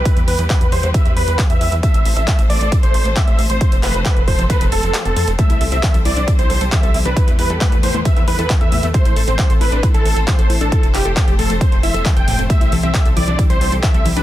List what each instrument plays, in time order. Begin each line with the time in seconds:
Already playing: string section E3 G4, supersaw synth B4
0.05 string section G3 B3 B4, kick, closed hi-hat
0.17 analog synth bass E2, closed hi-hat
0.28 analog synth bass E2, supersaw synth B4, open hi-hat
0.39 analog synth bass E2, closed hi-hat
0.50 supersaw synth B4, kick, clap, closed hi-hat
0.61 analog synth bass E2, closed hi-hat
0.72 analog synth bass E2, supersaw synth C5, open hi-hat
0.83 analog synth bass E2, closed hi-hat
0.94 supersaw synth E5, kick, closed hi-hat
1.05 analog synth bass E2, closed hi-hat
1.16 analog synth bass E2, supersaw synth B4, open hi-hat
1.28 analog synth bass E2, closed hi-hat
1.39 kick, clap, closed hi-hat
1.50 analog synth bass E2, supersaw synth E5, closed hi-hat
1.61 analog synth bass E2, open hi-hat
1.72 analog synth bass E2, closed hi-hat
1.83 string section A3 C4 A4 C5, supersaw synth E5, kick, closed hi-hat
1.94 analog synth bass A1, closed hi-hat
2.05 analog synth bass A1, open hi-hat
2.16 analog synth bass A1, supersaw synth E5, closed hi-hat
2.28 kick, clap, closed hi-hat
2.39 analog synth bass A1, closed hi-hat
2.50 analog synth bass A1, supersaw synth D5, open hi-hat
2.61 analog synth bass A1, closed hi-hat
2.72 kick, closed hi-hat
2.83 analog synth bass A1, supersaw synth C5, closed hi-hat
2.94 analog synth bass A1, open hi-hat
3.05 analog synth bass A1, closed hi-hat
3.16 supersaw synth E5, kick, clap, closed hi-hat
3.28 analog synth bass A1, closed hi-hat
3.39 analog synth bass A1, open hi-hat
3.50 analog synth bass A1, supersaw synth C5, closed hi-hat
3.61 string section F3 A4, kick, closed hi-hat
3.72 analog synth bass F1, closed hi-hat
3.83 analog synth bass F1, supersaw synth B4, clap, open hi-hat
3.94 analog synth bass F1, closed hi-hat
4.05 supersaw synth B4, kick, clap, closed hi-hat
4.16 analog synth bass F1, closed hi-hat
4.28 analog synth bass F1, supersaw synth C5, kick, open hi-hat
4.39 analog synth bass F1, closed hi-hat
4.50 supersaw synth B4, kick, closed hi-hat
4.61 analog synth bass F1, closed hi-hat
4.72 analog synth bass F1, supersaw synth A4, open hi-hat
4.83 analog synth bass F1, closed hi-hat
4.94 clap, closed hi-hat
5.05 analog synth bass F1, supersaw synth A4, closed hi-hat
5.16 analog synth bass F2, open hi-hat
5.28 analog synth bass F1, closed hi-hat
5.39 string section E3 G3 G4 C5, synth arpeggio sound A3, supersaw synth E5, kick, closed hi-hat
5.50 analog synth bass C2, synth arpeggio sound E4, closed hi-hat
5.61 analog synth bass C2, synth arpeggio sound A4, open hi-hat
5.72 analog synth bass C2, synth arpeggio sound C4, supersaw synth E5, closed hi-hat
5.83 synth arpeggio sound E3, kick, clap, closed hi-hat
5.94 analog synth bass C2, synth arpeggio sound A4, closed hi-hat
6.05 analog synth bass C2, synth arpeggio sound E4, supersaw synth D5, open hi-hat
6.17 analog synth bass C2, synth arpeggio sound D4, closed hi-hat
6.28 synth arpeggio sound E4, kick, closed hi-hat
6.39 analog synth bass C2, synth arpeggio sound E4, supersaw synth C5, closed hi-hat
6.50 analog synth bass C2, synth arpeggio sound A4, open hi-hat
6.61 analog synth bass C2, synth arpeggio sound A4, closed hi-hat
6.72 synth arpeggio sound E3, supersaw synth E5, kick, clap, closed hi-hat
6.83 analog synth bass C2, synth arpeggio sound A4, closed hi-hat
6.94 analog synth bass C2, synth arpeggio sound E4, open hi-hat
7.05 analog synth bass C2, synth arpeggio sound D4, supersaw synth B4, closed hi-hat
7.16 string section B3 B4, synth arpeggio sound E4, kick, closed hi-hat
7.28 analog synth bass E2, synth arpeggio sound E4, closed hi-hat
7.39 analog synth bass E2, synth arpeggio sound E4, supersaw synth B4, open hi-hat
7.50 analog synth bass E2, synth arpeggio sound A4, closed hi-hat
7.61 synth arpeggio sound A3, supersaw synth B4, kick, clap, closed hi-hat
7.72 analog synth bass E2, synth arpeggio sound A4, closed hi-hat
7.83 analog synth bass E2, synth arpeggio sound A2, supersaw synth C5, open hi-hat
7.94 analog synth bass E2, synth arpeggio sound A3, closed hi-hat
8.05 synth arpeggio sound A3, supersaw synth E5, kick, closed hi-hat
8.16 analog synth bass E2, synth arpeggio sound A3, closed hi-hat
8.28 analog synth bass E2, synth arpeggio sound E4, supersaw synth B4, open hi-hat
8.39 analog synth bass E2, synth arpeggio sound A4, closed hi-hat
8.50 synth arpeggio sound E3, kick, clap, closed hi-hat
8.61 analog synth bass E2, synth arpeggio sound A4, supersaw synth E5, closed hi-hat
8.72 analog synth bass E2, synth arpeggio sound A2, open hi-hat
8.83 analog synth bass E2, synth arpeggio sound A3, closed hi-hat
8.94 synth arpeggio sound A3, string section A3 C4 A4 C5, supersaw synth C5, kick, closed hi-hat
9.05 analog synth bass A1, synth arpeggio sound E4, closed hi-hat
9.16 analog synth bass A1, synth arpeggio sound A4, open hi-hat
9.28 analog synth bass A1, synth arpeggio sound C4, supersaw synth C5, closed hi-hat
9.39 synth arpeggio sound E3, kick, clap, closed hi-hat
9.50 analog synth bass A1, synth arpeggio sound A4, closed hi-hat
9.61 analog synth bass A1, synth arpeggio sound E4, supersaw synth B4, open hi-hat
9.72 analog synth bass A1, synth arpeggio sound D4, closed hi-hat
9.83 synth arpeggio sound E4, kick, closed hi-hat
9.94 analog synth bass A1, synth arpeggio sound E4, supersaw synth A4, closed hi-hat
10.05 analog synth bass A1, synth arpeggio sound A4, open hi-hat
10.16 analog synth bass A1, synth arpeggio sound A4, closed hi-hat
10.28 synth arpeggio sound E3, supersaw synth C5, kick, clap, closed hi-hat
10.39 analog synth bass A1, synth arpeggio sound A4, closed hi-hat
10.50 analog synth bass A1, synth arpeggio sound E4, open hi-hat
10.61 analog synth bass A1, synth arpeggio sound D4, supersaw synth A4, closed hi-hat
10.72 string section F3 C4, synth arpeggio sound E4, kick, closed hi-hat
10.83 analog synth bass F1, synth arpeggio sound E4, closed hi-hat
10.94 analog synth bass F1, synth arpeggio sound E4, supersaw synth G4, clap, open hi-hat
11.05 analog synth bass F1, synth arpeggio sound A4, closed hi-hat
11.17 synth arpeggio sound A3, supersaw synth G4, kick, clap, closed hi-hat
11.28 analog synth bass F1, synth arpeggio sound A4, closed hi-hat
11.39 analog synth bass F1, synth arpeggio sound A2, supersaw synth A4, open hi-hat
11.50 analog synth bass F1, synth arpeggio sound A3, closed hi-hat
11.61 synth arpeggio sound A3, supersaw synth C5, kick, closed hi-hat
11.72 analog synth bass F1, synth arpeggio sound A3, closed hi-hat
11.83 analog synth bass F1, synth arpeggio sound E4, supersaw synth E5, open hi-hat
11.94 analog synth bass F1, synth arpeggio sound A4, closed hi-hat
12.05 synth arpeggio sound E3, kick, clap, closed hi-hat
12.16 analog synth bass F1, synth arpeggio sound A4, supersaw synth G5, closed hi-hat
12.28 analog synth bass F1, synth arpeggio sound A2, open hi-hat
12.39 analog synth bass F1, synth arpeggio sound A3, closed hi-hat
12.50 string section E3 G3 G4, synth arpeggio sound A3, supersaw synth E5, kick, closed hi-hat
12.61 analog synth bass C2, synth arpeggio sound E4, closed hi-hat
12.72 analog synth bass C2, synth arpeggio sound A4, open hi-hat, high conga
12.83 analog synth bass C2, synth arpeggio sound C4, supersaw synth E5, closed hi-hat
12.94 synth arpeggio sound E3, kick, clap, closed hi-hat
13.05 analog synth bass C2, synth arpeggio sound A4, closed hi-hat
13.16 analog synth bass C2, synth arpeggio sound E4, supersaw synth D5, open hi-hat, high conga
13.28 analog synth bass C2, synth arpeggio sound D4, closed hi-hat, high conga
13.39 synth arpeggio sound E4, kick, closed hi-hat
13.50 analog synth bass C2, synth arpeggio sound E4, supersaw synth C5, closed hi-hat
13.61 analog synth bass C2, synth arpeggio sound A4, open hi-hat
13.72 analog synth bass C2, synth arpeggio sound A4, closed hi-hat
13.83 synth arpeggio sound E3, supersaw synth E5, kick, clap, closed hi-hat
13.94 analog synth bass C2, synth arpeggio sound A4, closed hi-hat
14.05 analog synth bass C2, synth arpeggio sound E4, open hi-hat, high conga
14.16 analog synth bass C2, synth arpeggio sound D4, supersaw synth B4, closed hi-hat